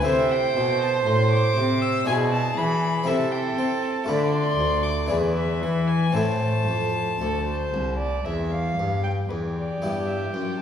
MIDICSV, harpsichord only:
0, 0, Header, 1, 2, 480
1, 0, Start_track
1, 0, Key_signature, 0, "minor"
1, 0, Tempo, 1003344
1, 37, Time_signature, 3, 2, 24, 8
1, 2437, Tempo, 1050788
1, 4357, Tempo, 1022147
1, 4977, End_track
2, 0, Start_track
2, 0, Title_t, "Harpsichord"
2, 0, Program_c, 0, 6
2, 6, Note_on_c, 0, 60, 55
2, 11, Note_on_c, 0, 64, 56
2, 21, Note_on_c, 0, 69, 57
2, 25, Note_on_c, 0, 48, 67
2, 250, Note_off_c, 0, 48, 0
2, 272, Note_on_c, 0, 47, 61
2, 493, Note_off_c, 0, 47, 0
2, 509, Note_on_c, 0, 45, 67
2, 733, Note_off_c, 0, 45, 0
2, 753, Note_on_c, 0, 48, 66
2, 961, Note_off_c, 0, 60, 0
2, 963, Note_off_c, 0, 64, 0
2, 968, Note_off_c, 0, 69, 0
2, 976, Note_off_c, 0, 48, 0
2, 978, Note_on_c, 0, 62, 58
2, 984, Note_on_c, 0, 64, 52
2, 989, Note_on_c, 0, 68, 53
2, 999, Note_on_c, 0, 47, 57
2, 1218, Note_off_c, 0, 47, 0
2, 1237, Note_on_c, 0, 52, 67
2, 1450, Note_off_c, 0, 62, 0
2, 1452, Note_on_c, 0, 60, 51
2, 1453, Note_off_c, 0, 64, 0
2, 1455, Note_off_c, 0, 52, 0
2, 1456, Note_off_c, 0, 68, 0
2, 1459, Note_on_c, 0, 64, 57
2, 1467, Note_on_c, 0, 69, 50
2, 1475, Note_on_c, 0, 48, 54
2, 1693, Note_off_c, 0, 48, 0
2, 1708, Note_off_c, 0, 60, 0
2, 1714, Note_on_c, 0, 60, 61
2, 1929, Note_off_c, 0, 64, 0
2, 1933, Note_off_c, 0, 60, 0
2, 1933, Note_off_c, 0, 69, 0
2, 1935, Note_on_c, 0, 57, 52
2, 1941, Note_on_c, 0, 65, 55
2, 1951, Note_on_c, 0, 69, 50
2, 1957, Note_on_c, 0, 50, 62
2, 2177, Note_off_c, 0, 50, 0
2, 2197, Note_on_c, 0, 38, 58
2, 2415, Note_off_c, 0, 57, 0
2, 2418, Note_off_c, 0, 65, 0
2, 2420, Note_off_c, 0, 38, 0
2, 2422, Note_on_c, 0, 62, 51
2, 2423, Note_off_c, 0, 69, 0
2, 2429, Note_on_c, 0, 64, 45
2, 2438, Note_on_c, 0, 68, 43
2, 2446, Note_on_c, 0, 40, 59
2, 2660, Note_off_c, 0, 40, 0
2, 2682, Note_on_c, 0, 52, 47
2, 2893, Note_off_c, 0, 62, 0
2, 2896, Note_off_c, 0, 64, 0
2, 2900, Note_off_c, 0, 52, 0
2, 2900, Note_off_c, 0, 68, 0
2, 2907, Note_on_c, 0, 60, 49
2, 2913, Note_on_c, 0, 64, 44
2, 2922, Note_on_c, 0, 69, 47
2, 2928, Note_on_c, 0, 45, 52
2, 3144, Note_off_c, 0, 45, 0
2, 3164, Note_on_c, 0, 41, 49
2, 3383, Note_off_c, 0, 41, 0
2, 3406, Note_on_c, 0, 38, 52
2, 3625, Note_off_c, 0, 38, 0
2, 3645, Note_on_c, 0, 36, 48
2, 3864, Note_off_c, 0, 36, 0
2, 3883, Note_on_c, 0, 40, 46
2, 4103, Note_off_c, 0, 40, 0
2, 4127, Note_on_c, 0, 43, 50
2, 4336, Note_off_c, 0, 60, 0
2, 4339, Note_off_c, 0, 64, 0
2, 4343, Note_off_c, 0, 43, 0
2, 4343, Note_off_c, 0, 69, 0
2, 4362, Note_on_c, 0, 40, 37
2, 4582, Note_off_c, 0, 40, 0
2, 4602, Note_on_c, 0, 59, 32
2, 4604, Note_on_c, 0, 43, 39
2, 4606, Note_on_c, 0, 64, 35
2, 4609, Note_on_c, 0, 67, 35
2, 4773, Note_off_c, 0, 59, 0
2, 4822, Note_off_c, 0, 43, 0
2, 4847, Note_on_c, 0, 42, 45
2, 4948, Note_off_c, 0, 64, 0
2, 4950, Note_off_c, 0, 67, 0
2, 4977, Note_off_c, 0, 42, 0
2, 4977, End_track
0, 0, End_of_file